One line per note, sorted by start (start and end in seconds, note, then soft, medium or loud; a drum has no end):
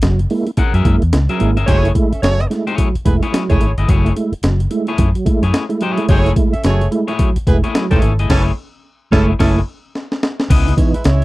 0.02 0.24 F#1 medium
0.02 0.20 F#3 medium
0.02 snare loud
0.02 closed hi-hat medium
0.19 closed hi-hat soft
0.30 0.48 G#3 medium
0.30 0.46 A#3 medium
0.30 0.46 E4 medium
0.30 open hi-hat medium
0.47 0.51 A#3 soft
0.47 0.51 E4 soft
0.47 closed hi-hat soft
0.57 0.64 A#3 soft
0.57 0.75 C#4 medium
0.57 0.64 E4 soft
0.57 0.74 G#4 medium
0.57 0.74 A#4 medium
0.57 0.74 F#5 medium
0.57 kick medium
0.57 closed hi-hat medium
0.74 0.82 F#2 medium
0.74 0.87 F#3 medium
0.74 0.95 C#4 medium
0.74 0.95 G#4 medium
0.74 0.95 A#4 medium
0.74 0.95 E5 medium
0.74 closed hi-hat soft
0.85 0.98 F#2 loud
0.85 1.03 G#3 medium
0.85 1.03 A#3 medium
0.85 1.03 E4 medium
0.85 kick loud
0.85 closed hi-hat medium
1.02 1.11 E2 medium
1.02 closed hi-hat soft
1.13 1.26 C#2 medium
1.13 1.19 A#3 soft
1.13 1.19 E4 soft
1.13 snare loud
1.13 closed hi-hat loud
1.29 1.42 F#3 medium
1.29 1.50 C#4 medium
1.29 1.50 G#4 medium
1.29 1.50 A#4 medium
1.29 1.50 E5 medium
1.29 closed hi-hat medium
1.40 1.58 G#1 medium
1.40 1.58 G#3 medium
1.40 1.58 A#3 medium
1.40 1.58 E4 medium
1.40 closed hi-hat medium
1.57 1.66 G1 medium
1.57 1.67 C#4 medium
1.57 1.67 G#4 medium
1.57 1.67 A#4 medium
1.57 1.68 E5 medium
1.57 closed hi-hat medium
1.66 1.90 F#1 loud
1.66 1.85 F#3 medium
1.66 1.89 A3 loud
1.66 1.90 A3 medium
1.66 1.90 E4 medium
1.66 1.89 G#4 loud
1.66 1.91 G#4 medium
1.66 1.89 C#5 loud
1.66 1.91 C#5 loud
1.66 kick loud
1.66 closed hi-hat medium
1.83 1.88 A3 soft
1.83 1.88 E4 soft
1.83 closed hi-hat medium
1.95 2.13 G#3 medium
1.95 2.13 A3 medium
1.95 2.13 E4 medium
1.95 kick medium
1.95 closed hi-hat medium
2.12 2.21 C#4 medium
2.12 2.21 A4 medium
2.12 2.20 E5 medium
2.12 muted fingered electric bass stroke soft
2.12 closed hi-hat soft
2.22 2.44 F#1 medium
2.22 2.40 F#3 medium
2.22 2.44 A3 loud
2.22 2.45 G#4 loud
2.22 2.44 C#5 loud
2.22 snare loud
2.22 closed hi-hat loud
2.40 closed hi-hat soft
2.50 2.68 G#3 medium
2.50 2.66 A3 medium
2.50 2.66 E4 medium
2.50 snare soft
2.50 closed hi-hat medium
2.67 2.71 A3 soft
2.67 2.88 A3 medium
2.67 2.71 E4 soft
2.67 2.88 E4 medium
2.67 2.87 G#4 medium
2.67 2.88 C#5 medium
2.67 closed hi-hat soft
2.78 2.96 F#3 medium
2.78 kick medium
2.78 closed hi-hat medium
2.95 muted fingered electric bass stroke soft
2.95 closed hi-hat soft
3.05 3.19 E1 medium
3.05 3.23 G#3 medium
3.05 3.21 A3 medium
3.05 3.15 B3 medium
3.05 3.21 E4 medium
3.05 3.15 G#4 medium
3.05 3.15 B4 medium
3.05 kick medium
3.05 closed hi-hat medium
3.22 3.26 A3 soft
3.22 3.43 A3 medium
3.22 3.27 E4 soft
3.22 3.43 E4 medium
3.22 3.43 G#4 medium
3.22 3.43 C#5 medium
3.22 closed hi-hat medium
3.32 3.50 F#3 medium
3.32 snare loud
3.32 closed hi-hat loud
3.49 3.59 E1 medium
3.49 3.62 G#3 medium
3.49 3.59 A3 medium
3.49 3.72 A3 medium
3.49 3.71 A3 medium
3.49 3.59 E4 medium
3.49 3.71 E4 medium
3.49 3.72 G#4 medium
3.49 3.71 G#4 medium
3.49 3.72 C#5 loud
3.49 3.70 C#5 medium
3.49 kick medium
3.49 closed hi-hat medium
3.60 3.74 G#1 medium
3.60 3.67 A3 soft
3.60 3.67 E4 soft
3.60 closed hi-hat medium
3.78 3.86 G1 medium
3.78 3.88 A3 soft
3.78 3.88 E4 medium
3.78 3.88 G#4 medium
3.78 3.90 D#5 medium
3.78 closed hi-hat medium
3.88 4.10 F#1 loud
3.88 4.06 F#3 medium
3.88 4.12 A3 medium
3.88 4.12 E4 medium
3.88 4.12 G#4 medium
3.88 4.12 C#5 loud
3.88 kick loud
3.88 closed hi-hat loud
4.05 4.09 A3 soft
4.05 4.09 E4 soft
4.05 closed hi-hat medium
4.16 4.34 G#3 medium
4.16 4.34 A3 medium
4.16 4.34 E4 medium
4.16 closed hi-hat medium
4.32 muted fingered electric bass stroke soft
4.32 closed hi-hat soft
4.43 4.65 F#1 loud
4.43 4.61 F#3 medium
4.43 snare loud
4.43 closed hi-hat medium
4.60 closed hi-hat medium
4.71 4.89 G#3 medium
4.71 4.86 A3 medium
4.71 4.86 E4 medium
4.71 closed hi-hat medium
4.87 4.92 A3 soft
4.87 5.09 A3 medium
4.87 4.92 E4 soft
4.87 5.09 E4 medium
4.87 5.09 G#4 medium
4.87 5.08 C#5 medium
4.87 closed hi-hat soft
4.98 5.12 F#2 loud
4.98 5.05 A3 soft
4.98 5.05 E4 soft
4.98 kick loud
4.98 closed hi-hat medium
5.15 5.28 F#3 medium
5.15 closed hi-hat soft
5.25 5.44 G#3 medium
5.25 5.44 A3 medium
5.25 5.44 E4 medium
5.25 muted fingered electric bass stroke soft
5.25 kick medium
5.25 closed hi-hat medium
5.42 5.51 F#2 loud
5.42 5.64 A3 medium
5.42 5.64 E4 medium
5.42 5.64 G#4 medium
5.42 5.63 C#5 medium
5.42 closed hi-hat soft
5.54 snare loud
5.54 closed hi-hat medium
5.69 5.83 G#3 medium
5.69 5.83 A3 medium
5.69 5.83 E4 medium
5.69 closed hi-hat medium
5.81 5.99 F#3 medium
5.81 6.05 A3 medium
5.81 6.05 E4 medium
5.81 6.05 G#4 medium
5.81 6.05 C#5 medium
5.81 closed hi-hat medium
5.97 6.10 G#3 medium
5.97 6.11 A3 medium
5.97 6.11 E4 medium
5.97 closed hi-hat medium
6.08 6.31 F#1 loud
6.08 6.27 F#3 medium
6.08 6.31 A3 loud
6.08 6.32 A3 loud
6.08 6.32 E4 medium
6.08 6.31 G#4 loud
6.08 6.32 G#4 medium
6.08 6.31 C#5 loud
6.08 6.33 C#5 medium
6.08 kick loud
6.08 closed hi-hat medium
6.25 6.30 A3 soft
6.25 6.30 E4 soft
6.25 closed hi-hat medium
6.36 6.54 G#3 medium
6.36 6.54 A3 medium
6.36 6.55 E4 medium
6.36 kick loud
6.36 closed hi-hat medium
6.52 6.62 C#4 medium
6.52 6.62 A4 medium
6.52 6.62 E5 medium
6.52 muted fingered electric bass stroke soft
6.52 closed hi-hat soft
6.64 6.86 F#1 medium
6.64 6.82 F#3 medium
6.64 6.86 A3 loud
6.64 6.86 G#4 loud
6.64 6.86 C#5 loud
6.64 snare loud
6.64 closed hi-hat loud
6.81 closed hi-hat medium
6.91 7.09 G#3 medium
6.91 7.08 A3 medium
6.91 7.07 E4 medium
6.91 closed hi-hat medium
7.08 7.29 A3 medium
7.08 7.13 A3 soft
7.08 7.13 E4 soft
7.08 7.29 E4 medium
7.08 7.29 G#4 medium
7.08 7.29 C#5 medium
7.08 closed hi-hat soft
7.19 7.38 F#3 medium
7.19 kick medium
7.19 closed hi-hat medium
7.36 muted fingered electric bass stroke soft
7.36 closed hi-hat medium
7.46 7.60 E1 medium
7.46 7.65 G#3 medium
7.46 7.63 A3 medium
7.46 7.57 B3 medium
7.46 7.63 E4 medium
7.46 7.57 G#4 medium
7.46 7.57 B4 medium
7.46 kick medium
7.46 closed hi-hat medium
7.64 7.68 A3 soft
7.64 7.85 A3 medium
7.64 7.68 E4 soft
7.64 7.85 E4 medium
7.64 7.84 G#4 medium
7.64 7.84 C#5 medium
7.64 closed hi-hat soft
7.75 7.93 F#3 soft
7.75 snare loud
7.75 closed hi-hat medium
7.90 8.00 E1 medium
7.90 8.12 E3 loud
7.90 8.04 G#3 medium
7.90 8.01 A3 medium
7.90 8.12 A3 medium
7.90 8.13 C#4 medium
7.90 8.12 E4 medium
7.90 8.01 E4 loud
7.90 8.12 G#4 medium
7.90 8.13 A4 loud
7.90 8.12 C#5 medium
7.90 kick medium
7.90 closed hi-hat medium
8.02 8.18 G#1 medium
8.02 8.09 A3 soft
8.02 8.09 E4 soft
8.02 closed hi-hat medium
8.18 8.29 G1 medium
8.18 8.29 A3 soft
8.18 8.30 E4 medium
8.18 8.30 G#4 medium
8.18 8.30 D#5 medium
8.18 closed hi-hat medium
8.29 8.50 F#1 loud
8.29 8.44 E3 loud
8.29 8.50 A3 loud
8.29 8.44 C#4 loud
8.29 8.50 E4 loud
8.29 8.51 G#4 loud
8.29 8.44 A4 loud
8.29 8.51 C#5 loud
8.29 kick loud
8.29 snare loud
8.29 crash medium
9.11 9.32 F#1 loud
9.11 9.27 E3 loud
9.11 9.31 G#3 loud
9.11 9.31 A3 loud
9.11 9.33 A3 loud
9.11 9.27 C#4 loud
9.11 9.32 E4 loud
9.11 9.33 E4 loud
9.11 9.33 G#4 medium
9.11 9.26 A4 loud
9.11 9.32 C#5 medium
9.11 kick loud
9.11 snare loud
9.39 9.60 F#1 loud
9.39 9.54 E3 medium
9.39 9.59 A3 medium
9.39 9.60 A3 loud
9.39 9.54 C#4 loud
9.39 9.59 E4 medium
9.39 9.60 E4 loud
9.39 9.59 G#4 loud
9.39 9.54 A4 loud
9.39 9.59 C#5 loud
9.39 kick loud
9.39 snare loud
9.39 crash medium
9.95 snare medium
10.12 snare medium
10.23 snare loud
10.40 snare medium
10.50 10.72 C#2 loud
10.50 10.68 C#3 medium
10.50 10.73 B3 loud
10.50 10.73 E4 loud
10.50 10.73 G#4 loud
10.50 10.74 D#5 loud
10.50 kick loud
10.50 closed hi-hat medium
10.50 crash loud
10.66 10.71 B3 soft
10.66 10.71 D#4 medium
10.66 closed hi-hat medium
10.77 10.95 E3 medium
10.77 10.91 G#3 medium
10.77 10.95 B3 medium
10.77 10.95 D#4 medium
10.77 10.91 E4 medium
10.77 10.91 C#5 medium
10.77 kick loud
10.77 closed hi-hat medium
10.93 11.02 G#3 medium
10.93 11.02 E4 medium
10.93 11.03 B4 medium
10.93 muted fingered electric bass stroke soft
10.93 closed hi-hat soft
11.04 11.24 C#2 medium
11.04 11.23 C#3 medium
11.04 11.24 G#3 loud
11.04 11.24 E4 loud
11.04 11.24 C#5 loud
11.04 snare loud
11.04 closed hi-hat loud